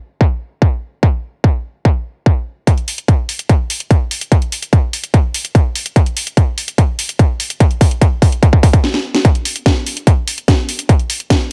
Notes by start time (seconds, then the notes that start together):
0.21 kick
0.62 kick
1.03 kick
1.44 kick
1.85 kick
2.26 kick
2.67 kick, closed hi-hat
2.78 closed hi-hat
2.88 open hi-hat
2.98 closed hi-hat
3.08 kick, closed hi-hat
3.29 open hi-hat
3.39 closed hi-hat
3.49 kick, closed hi-hat
3.70 open hi-hat
3.80 closed hi-hat
3.91 kick, closed hi-hat
4.11 open hi-hat
4.21 closed hi-hat
4.32 kick, closed hi-hat
4.42 closed hi-hat
4.52 open hi-hat
4.62 closed hi-hat
4.73 kick, closed hi-hat
4.93 open hi-hat
5.04 closed hi-hat
5.14 kick, closed hi-hat
5.34 open hi-hat
5.45 closed hi-hat
5.55 kick, closed hi-hat
5.75 open hi-hat
5.86 closed hi-hat
5.96 kick, closed hi-hat
6.06 closed hi-hat
6.17 open hi-hat
6.27 closed hi-hat
6.37 kick, closed hi-hat
6.58 open hi-hat
6.68 closed hi-hat
6.78 kick, closed hi-hat
6.99 open hi-hat
7.09 closed hi-hat
7.19 kick, closed hi-hat
7.40 open hi-hat
7.50 closed hi-hat
7.60 kick, closed hi-hat
7.71 closed hi-hat
7.81 kick, open hi-hat
7.91 closed hi-hat
8.02 kick, closed hi-hat
8.22 kick, open hi-hat
8.32 closed hi-hat
8.43 kick, closed hi-hat
8.53 kick
8.63 kick, open hi-hat
8.73 kick, closed hi-hat
8.84 snare
8.94 snare
9.15 snare
9.25 kick, closed hi-hat
9.35 closed hi-hat
9.45 open hi-hat
9.56 closed hi-hat
9.66 kick, snare, closed hi-hat
9.86 open hi-hat
9.97 closed hi-hat
10.07 kick, closed hi-hat
10.28 open hi-hat
10.38 closed hi-hat
10.48 kick, snare, closed hi-hat
10.69 open hi-hat
10.79 closed hi-hat
10.89 kick, closed hi-hat
10.99 closed hi-hat
11.10 open hi-hat
11.20 closed hi-hat
11.30 kick, snare, closed hi-hat